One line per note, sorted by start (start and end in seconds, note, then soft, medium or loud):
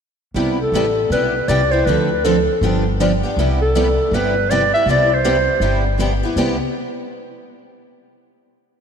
0.34 0.65 C2 medium
0.34 0.57 C3 medium
0.34 0.57 G3 medium
0.34 0.57 B3 medium
0.34 0.57 E4 medium
0.34 0.57 G4 medium
0.61 1.09 A4 medium
0.72 1.05 A1 medium
0.72 0.85 C3 medium
0.72 0.85 G3 medium
0.72 0.85 B3 medium
0.72 0.85 E4 medium
0.77 0.86 G4 medium
1.10 1.42 B1 medium
1.10 1.32 C3 medium
1.10 1.32 G3 medium
1.10 1.33 B3 medium
1.10 1.33 E4 medium
1.10 1.33 G4 medium
1.10 1.50 B4 medium
1.48 1.80 C2 medium
1.48 1.60 C3 medium
1.48 1.60 G3 medium
1.48 1.60 B3 medium
1.48 1.60 E4 medium
1.48 1.61 G4 medium
1.48 1.73 D5 medium
1.71 1.87 B3 soft
1.71 1.86 E4 medium
1.71 1.86 G4 soft
1.71 1.87 C5 medium
1.86 2.47 D2 medium
1.86 2.08 D3 medium
1.86 2.08 F3 medium
1.86 2.08 C4 medium
1.86 2.08 D4 medium
1.86 2.09 A4 medium
1.86 2.26 B4 medium
2.25 2.35 D3 medium
2.25 2.36 F3 medium
2.25 2.36 C4 medium
2.25 2.36 D4 medium
2.25 2.85 A4 medium
2.25 2.36 A4 medium
2.61 3.22 G1 medium
2.61 2.83 D3 medium
2.61 2.83 F3 medium
2.61 2.83 B3 medium
2.61 2.83 D4 medium
2.61 2.84 G4 medium
3.00 3.11 D3 medium
3.00 3.11 F3 medium
3.00 3.11 B3 medium
3.00 3.11 D4 medium
3.00 3.11 G4 medium
3.23 3.38 B3 soft
3.23 3.37 D4 soft
3.23 3.37 G4 medium
3.37 3.97 C2 medium
3.37 3.59 C3 medium
3.37 3.59 G3 medium
3.37 3.59 B3 medium
3.37 3.59 E4 medium
3.37 3.59 G4 medium
3.62 4.16 A4 medium
3.75 3.86 C3 medium
3.75 3.86 G3 medium
3.75 3.86 B3 medium
3.75 3.86 E4 medium
3.75 3.86 G4 medium
4.11 4.72 G1 medium
4.11 4.34 C3 medium
4.11 4.34 G3 medium
4.11 4.34 B3 medium
4.11 4.34 E4 medium
4.11 4.34 G4 medium
4.11 4.52 B4 medium
4.50 4.61 C3 medium
4.50 4.61 G3 medium
4.50 4.61 B3 medium
4.50 4.61 E4 medium
4.50 4.62 G4 medium
4.50 4.73 D5 medium
4.74 4.88 B3 soft
4.74 4.88 E4 soft
4.74 4.88 G4 soft
4.74 4.87 E5 medium
4.86 5.46 C2 medium
4.86 5.09 C3 medium
4.86 5.09 G3 medium
4.86 5.09 B3 medium
4.90 5.09 E4 medium
4.90 5.09 G4 medium
4.90 5.15 D5 medium
5.14 5.87 C5 medium
5.24 5.35 C3 medium
5.24 5.36 G3 medium
5.24 5.36 B3 medium
5.24 5.36 E4 medium
5.24 5.36 G4 medium
5.60 6.21 G1 medium
5.60 5.82 C3 medium
5.60 5.83 G3 medium
5.60 5.83 B3 medium
5.60 5.83 E4 medium
5.60 5.83 G4 medium
6.00 6.10 C3 medium
6.00 6.11 G3 medium
6.00 6.11 B3 medium
6.00 6.11 E4 medium
6.00 6.11 G4 medium
6.23 6.36 B3 soft
6.23 6.37 E4 soft
6.23 6.37 G4 medium
6.36 6.58 C2 medium
6.36 6.55 C3 medium
6.36 6.56 G3 medium
6.36 6.56 B3 medium
6.36 6.56 E4 medium
6.36 6.56 G4 medium